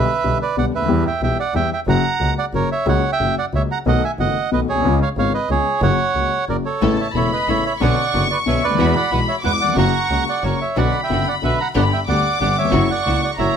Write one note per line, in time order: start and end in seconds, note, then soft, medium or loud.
0.00 0.38 B4 medium
0.00 0.38 E5 loud
0.24 0.38 B1 medium
0.24 0.38 B1 soft
0.24 0.38 B2 soft
0.24 0.38 D3 soft
0.24 0.38 G3 soft
0.24 0.38 B3 soft
0.24 0.38 G4 soft
0.42 0.56 B4 medium
0.42 0.56 D5 medium
0.57 0.70 B1 medium
0.57 0.71 B1 soft
0.57 0.71 B2 soft
0.57 0.71 D3 soft
0.57 0.71 G3 soft
0.57 0.71 B3 soft
0.57 0.71 G4 soft
0.57 0.65 D5 medium
0.57 0.66 F#5 medium
0.73 0.88 D2 medium
0.73 1.04 B4 medium
0.73 1.04 E5 medium
0.77 0.81 C#2 soft
0.82 0.86 D2 medium
0.82 0.89 D#2 medium
0.88 1.03 E2 medium
0.88 1.03 E3 medium
0.88 1.03 G3 medium
0.88 1.03 B3 medium
0.88 1.03 G4 medium
1.07 1.21 E5 medium
1.07 1.21 G5 medium
1.21 1.35 B1 medium
1.21 1.36 B1 soft
1.21 1.36 B2 medium
1.21 1.35 E3 soft
1.21 1.36 G3 soft
1.21 1.36 B3 soft
1.21 1.36 G4 soft
1.21 1.38 E5 medium
1.21 1.38 G5 medium
1.40 1.54 D5 medium
1.40 1.54 F#5 medium
1.54 1.68 E2 medium
1.54 1.69 E2 soft
1.54 1.69 E3 soft
1.54 1.68 G3 soft
1.54 1.69 B3 soft
1.54 1.69 G4 soft
1.54 1.70 E5 medium
1.54 1.70 G5 medium
1.73 1.80 E5 medium
1.73 1.80 G5 medium
1.87 2.01 F#1 medium
1.87 2.01 F#2 medium
1.87 2.01 C#3 medium
1.87 2.01 F#3 medium
1.87 2.01 A#3 medium
1.87 2.01 F#4 medium
1.87 2.34 F#5 medium
1.87 2.34 A#5 loud
2.20 2.34 C#2 soft
2.20 2.34 C#2 medium
2.20 2.34 C#3 soft
2.20 2.34 F#3 soft
2.20 2.34 A#3 soft
2.20 2.34 F#4 soft
2.38 2.45 D5 medium
2.38 2.45 F#5 medium
2.53 2.67 F#1 medium
2.53 2.67 F#2 soft
2.53 2.67 C#3 soft
2.53 2.67 F#3 soft
2.53 2.67 A#3 soft
2.53 2.67 F#4 soft
2.53 2.69 A#4 medium
2.53 2.70 C#5 medium
2.72 2.86 C#5 medium
2.72 2.88 E5 medium
2.86 3.00 C#2 medium
2.86 3.00 C#3 medium
2.86 3.00 F#3 medium
2.86 3.00 A#3 medium
2.86 3.00 F#4 medium
2.86 3.11 C#5 medium
2.86 3.11 F#5 medium
3.12 3.35 E5 medium
3.12 3.35 G5 medium
3.20 3.34 F#1 medium
3.20 3.34 F#2 soft
3.20 3.34 C#3 soft
3.20 3.34 F#3 soft
3.20 3.34 A#3 soft
3.20 3.34 F#4 soft
3.38 3.45 D5 medium
3.38 3.46 F#5 medium
3.53 3.67 C#2 soft
3.53 3.67 C#2 medium
3.53 3.67 C#3 soft
3.53 3.67 F#3 soft
3.53 3.67 A#3 soft
3.53 3.67 F#4 soft
3.53 3.62 C#5 medium
3.53 3.62 E5 medium
3.71 3.79 F#5 medium
3.71 3.78 A#5 medium
3.86 4.00 B1 medium
3.86 4.00 B2 medium
3.86 4.00 D#3 medium
3.86 4.00 A3 medium
3.86 4.00 B3 medium
3.86 4.00 F#4 medium
3.86 4.02 D#5 medium
3.86 4.04 F#5 medium
4.04 4.11 E5 medium
4.04 4.12 G#5 medium
4.19 4.33 F#1 medium
4.19 4.33 F#1 soft
4.19 4.33 F#2 medium
4.19 4.33 D#3 soft
4.19 4.33 A3 soft
4.19 4.33 B3 soft
4.19 4.33 F#4 soft
4.19 4.50 D#5 medium
4.19 4.50 F#5 medium
4.51 4.65 B1 soft
4.51 4.66 B1 medium
4.51 4.65 B2 soft
4.51 4.65 D#3 soft
4.51 4.65 A3 soft
4.51 4.66 B3 soft
4.51 4.66 F#4 soft
4.51 4.60 B4 medium
4.51 4.60 D#5 medium
4.69 4.76 A#1 soft
4.69 4.84 B1 medium
4.69 4.99 G#4 medium
4.69 4.99 C#5 medium
4.76 4.80 B1 medium
4.80 4.84 C2 medium
4.85 4.98 C#2 medium
4.85 4.98 C#3 medium
4.85 4.98 G#3 medium
4.85 4.98 B3 medium
4.85 4.99 F4 medium
5.02 5.09 C#5 medium
5.02 5.09 F5 medium
5.17 5.30 G#1 medium
5.17 5.31 G#1 medium
5.17 5.31 G#2 medium
5.17 5.31 C#3 soft
5.17 5.31 G#3 soft
5.17 5.31 B3 soft
5.17 5.31 F4 soft
5.17 5.33 C#5 medium
5.17 5.33 F5 medium
5.34 5.49 B4 medium
5.34 5.50 D#5 medium
5.49 5.63 C#2 medium
5.49 5.64 C#2 soft
5.49 5.63 C#3 soft
5.49 5.63 G#3 soft
5.49 5.64 B3 soft
5.49 5.64 F4 soft
5.49 5.80 G#4 medium
5.49 5.82 C#5 medium
5.82 5.96 F#1 loud
5.82 5.96 F#2 medium
5.82 5.96 C#3 medium
5.82 5.96 F#3 medium
5.82 5.96 A#3 medium
5.82 5.96 F#4 medium
5.82 6.45 C#5 medium
5.82 6.44 F#5 loud
6.15 6.29 C#2 medium
6.15 6.29 C#2 soft
6.15 6.29 C#3 soft
6.15 6.29 F#3 soft
6.15 6.29 A#3 soft
6.15 6.29 F#4 soft
6.48 6.62 F#1 medium
6.48 6.62 F#2 soft
6.48 6.62 C#3 soft
6.48 6.62 F#3 soft
6.48 6.62 A#3 soft
6.48 6.62 F#4 soft
6.48 6.57 A#4 medium
6.48 6.57 D5 medium
6.65 6.96 A4 medium
6.65 6.99 C#5 medium
6.81 6.96 A1 medium
6.81 6.96 A2 medium
6.81 6.96 C#3 medium
6.81 6.96 A3 medium
6.81 6.95 B3 medium
6.81 6.96 B3 medium
6.81 6.95 C#4 medium
6.81 6.96 E4 medium
6.81 6.95 A4 medium
6.81 7.13 A5 medium
7.00 7.08 C#5 medium
7.00 7.07 E5 medium
7.14 7.29 E1 medium
7.14 7.29 E1 soft
7.14 7.29 E2 soft
7.14 7.29 C#3 soft
7.14 7.29 A3 soft
7.14 7.29 B3 soft
7.14 7.29 C#4 soft
7.14 7.29 E4 soft
7.14 7.29 A4 soft
7.14 7.31 C#5 medium
7.14 7.31 E5 medium
7.14 7.81 B5 medium
7.33 7.48 B4 medium
7.33 7.49 D#5 medium
7.48 7.62 A1 medium
7.48 7.62 A1 soft
7.48 7.62 A2 soft
7.48 7.62 C#3 soft
7.48 7.62 A3 soft
7.48 7.62 B3 soft
7.48 7.62 C#4 soft
7.48 7.62 E4 soft
7.48 7.62 A4 medium
7.48 7.64 C#5 medium
7.48 7.64 E5 medium
7.66 7.73 C#5 medium
7.66 7.73 E5 medium
7.81 7.95 B1 medium
7.81 7.95 B2 medium
7.81 7.95 D3 medium
7.81 7.95 B3 medium
7.81 7.95 C#4 medium
7.81 7.95 D4 medium
7.81 7.95 F#4 medium
7.81 7.95 B4 medium
7.81 8.28 D5 medium
7.81 8.27 F#5 medium
7.81 8.75 C#6 loud
8.13 8.28 F#1 medium
8.13 8.28 F#2 soft
8.13 8.28 D3 soft
8.13 8.28 B3 soft
8.13 8.27 C#4 soft
8.13 8.28 C#4 soft
8.13 8.27 D4 soft
8.13 8.28 F#4 soft
8.13 8.27 B4 soft
8.31 8.39 B4 medium
8.31 8.38 D5 medium
8.46 8.60 B1 soft
8.46 8.60 B1 medium
8.46 8.60 B2 medium
8.46 8.60 D3 soft
8.46 8.60 B3 soft
8.46 8.60 C#4 medium
8.46 8.60 C#4 soft
8.46 8.60 D4 soft
8.46 8.60 F#4 soft
8.46 8.60 B4 medium
8.46 8.62 C#5 medium
8.46 8.64 E5 medium
8.63 8.71 C#2 soft
8.63 8.79 D2 medium
8.63 8.94 B4 medium
8.63 8.93 D5 medium
8.71 8.75 D2 medium
8.75 8.79 D#2 medium
8.75 8.92 E2 medium
8.75 8.92 E3 medium
8.75 8.92 G#3 medium
8.75 8.92 B3 medium
8.75 8.92 F#4 medium
8.75 9.40 B5 medium
8.79 8.93 E2 loud
8.79 8.92 E4 medium
8.79 8.93 F#4 medium
8.96 9.11 D5 medium
8.96 9.11 F#5 medium
9.11 9.25 B1 medium
9.11 9.25 B2 medium
9.11 9.25 E3 soft
9.11 9.25 G#3 soft
9.11 9.25 B3 soft
9.11 9.25 E4 soft
9.11 9.25 F#4 soft
9.11 9.26 F#4 soft
9.11 9.20 B4 medium
9.11 9.19 F#5 medium
9.28 9.36 C#5 medium
9.28 9.35 E5 medium
9.44 9.58 E2 soft
9.44 9.58 E2 medium
9.44 9.58 E3 soft
9.44 9.58 G#3 soft
9.44 9.58 B3 soft
9.44 9.58 E4 soft
9.44 9.58 F#4 medium
9.44 9.58 F#4 soft
9.44 9.52 B4 medium
9.44 9.52 F#5 medium
9.44 9.77 D6 loud
9.61 9.68 D#2 soft
9.61 9.76 D5 medium
9.61 9.77 F#5 medium
9.68 9.73 E2 medium
9.73 9.91 F#1 loud
9.73 9.77 F2 medium
9.73 9.91 C#3 medium
9.73 9.91 F#3 medium
9.73 9.91 A#3 medium
9.73 9.91 C#4 medium
9.77 9.91 F#2 medium
9.77 9.91 A#3 medium
9.77 9.91 F#4 medium
9.77 10.24 F#5 medium
9.77 10.24 A#5 loud
9.77 10.56 C#6 medium
10.09 10.24 C#2 medium
10.09 10.24 C#2 soft
10.09 10.24 C#3 soft
10.09 10.24 F#3 soft
10.09 10.24 A#3 soft
10.09 10.24 C#4 soft
10.09 10.24 F#4 soft
10.29 10.44 D5 medium
10.29 10.43 F#5 medium
10.43 10.58 F#1 medium
10.43 10.58 F#2 soft
10.43 10.58 C#3 soft
10.43 10.58 F#3 soft
10.43 10.57 A#3 soft
10.43 10.58 A#3 soft
10.43 10.57 C#4 soft
10.43 10.57 F#4 medium
10.43 10.58 F#4 soft
10.43 10.60 A#4 medium
10.43 10.59 C#5 medium
10.61 10.77 C#5 medium
10.61 10.76 E5 medium
10.76 10.91 B1 medium
10.76 10.91 B2 medium
10.76 10.91 D3 medium
10.76 10.91 F#3 medium
10.76 10.91 B3 medium
10.76 10.91 D4 medium
10.76 10.91 F#4 medium
10.76 11.01 D5 medium
10.76 11.01 F#5 medium
10.76 11.72 B5 medium
11.03 11.26 E5 medium
11.03 11.28 G5 medium
11.09 11.24 F#1 soft
11.09 11.24 F#1 medium
11.09 11.24 F#2 soft
11.09 11.24 D3 soft
11.09 11.24 F#3 soft
11.09 11.24 B3 soft
11.09 11.24 D4 soft
11.09 11.24 F#4 soft
11.27 11.35 D5 medium
11.27 11.35 F#5 medium
11.42 11.57 B1 soft
11.42 11.57 B1 medium
11.42 11.57 B2 soft
11.42 11.56 D3 soft
11.42 11.57 F#3 soft
11.42 11.57 B3 soft
11.42 11.57 D4 soft
11.42 11.57 F#4 soft
11.42 11.57 F#4 medium
11.42 11.59 B4 medium
11.42 11.59 E5 medium
11.60 11.68 F#5 medium
11.60 11.67 A#5 medium
11.74 11.89 G1 medium
11.74 11.90 G2 medium
11.74 11.89 D3 medium
11.74 11.90 G3 medium
11.74 11.89 B3 medium
11.74 11.90 B3 medium
11.74 11.89 D4 medium
11.74 11.89 G4 medium
11.74 11.90 G4 medium
11.74 11.84 D5 medium
11.74 11.83 F#5 medium
11.74 12.06 B5 medium
11.92 12.00 E5 medium
11.92 12.00 G5 medium
12.07 12.22 D2 medium
12.07 12.22 D3 medium
12.07 12.22 G3 soft
12.07 12.21 B3 soft
12.07 12.22 B3 soft
12.07 12.21 D4 soft
12.07 12.22 G4 soft
12.07 12.39 D5 medium
12.07 12.39 F#5 medium
12.07 12.69 D6 medium
12.40 12.54 G1 medium
12.40 12.55 G1 soft
12.40 12.55 G2 soft
12.40 12.54 D3 soft
12.40 12.54 G3 soft
12.40 12.54 B3 medium
12.40 12.55 B3 soft
12.40 12.54 D4 soft
12.40 12.54 G4 medium
12.40 12.55 G4 soft
12.40 12.56 D5 medium
12.40 12.57 F#5 medium
12.58 12.65 D#2 soft
12.58 12.88 C#5 medium
12.58 12.88 E5 medium
12.65 12.69 E2 medium
12.69 12.86 F#1 loud
12.69 12.73 F2 medium
12.69 12.87 F#2 medium
12.69 12.87 C#3 medium
12.69 12.87 F#3 medium
12.69 12.86 A#3 medium
12.69 12.87 A#3 medium
12.69 12.86 E4 medium
12.69 12.87 F#4 medium
12.69 13.39 C#6 medium
12.73 12.87 E4 medium
12.90 13.21 D5 medium
12.90 13.22 F#5 medium
13.05 13.19 C#2 medium
13.05 13.20 C#2 medium
13.05 13.20 C#3 medium
13.05 13.20 F#3 soft
13.05 13.19 A#3 soft
13.05 13.20 A#3 soft
13.05 13.19 E4 soft
13.05 13.20 E4 soft
13.05 13.20 F#4 medium
13.23 13.31 D5 medium
13.23 13.31 F#5 medium
13.38 13.52 F#1 medium
13.38 13.53 F#2 soft
13.38 13.52 C#3 soft
13.38 13.53 F#3 soft
13.38 13.52 A#3 medium
13.38 13.53 A#3 soft
13.38 13.52 E4 soft
13.38 13.53 E4 soft
13.38 13.52 F#4 medium
13.38 13.57 C#5 medium
13.38 13.57 E5 medium
13.38 13.57 A#5 medium